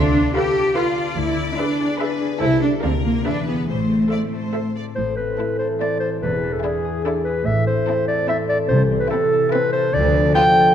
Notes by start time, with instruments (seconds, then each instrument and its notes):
Already playing: double bass section D2, harp D3 A4, cello section D4, violin section F4
0.14 harp B3
0.34 harp F4, cello section G4, viola section A4 B4, violin section A4 F5 B5
0.55 harp A4
0.76 cello section F4, viola section A4 B4, harp B4, violin section D5 F5 B5
0.97 harp A4
1.17 double bass section D2, harp D3, cello section E4
1.37 harp B3
1.51 cello section E4
1.58 cello section D4, harp E4, viola section G#4 B4, violin section E5 B5
1.79 harp G#4
1.99 viola section G#4 B4, harp B4, violin section B4 E5 B5
2.21 harp G#4
2.40 double bass section C2, harp C3, cello section E4, viola section A4 C5, violin section A4 E5 A5
2.62 cello section D4, harp E4 A4
2.83 double bass section D2, harp D3, cello section C4, viola section A#4, violin section A#4 D5 F5
3.04 cello section A#3, harp F4 A#4
3.25 double bass section E2, harp E3, cello section D4, viola section G#4 B4, violin section B4 E5
3.46 cello section B3, harp E4 G#4
3.68 double bass section A1, harp A2, cello section A3, violin section C5
3.91 harp C4
4.10 harp E4, viola section A4, violin section C5 D5 E5
4.32 harp A4, violin section C5
4.53 viola section A4, harp C5, violin section C5 E5
4.75 harp A4, violin section D5
4.96 double bass section A1, cello section A2, harp A2, french horn section E3 A4, clarinet C5
5.17 harp C4, clarinet B4
5.39 viola section A3, violin section E4 A5, harp E4
5.59 harp A4, clarinet C5
5.80 viola section A3, violin section E4 A5, harp C5, clarinet D5
6.00 harp A4, clarinet C5
6.22 double bass section E1, cello section E2, harp E2, french horn section G#4, clarinet B4
6.44 harp D4
6.53 clarinet A4
6.63 viola section D4, harp E4, violin section E4 G#5, clarinet G#4
6.85 harp G#4
7.04 viola section D4, violin section E4 G#5, clarinet A4, harp D5
7.24 harp G#4, clarinet B4
7.46 double bass section A1, cello section A2, harp A2, french horn section E3 A4, clarinet E5
7.67 harp C4, clarinet C5
7.87 viola section C4, harp E4, violin section E4 A5
8.08 harp A4, clarinet D5
8.28 viola section C4, violin section E4 A5, harp C5, clarinet E5
8.49 harp A4, clarinet D5
8.68 double bass section C2, cello section C3, harp C3, clarinet C5
8.91 harp C4
9.00 clarinet B4
9.10 viola section C4, harp E4, violin section E4 A5, clarinet A4
9.33 harp A4
9.52 viola section C4, violin section E4 A5, clarinet B4, harp C5
9.73 harp A4, clarinet C5
9.93 double bass section D2, harp D3, cello section D3, french horn section F3 A4, clarinet D5
10.14 harp B3
10.34 viola section B3, harp F4, violin section F4 A5, clarinet G5
10.55 harp A4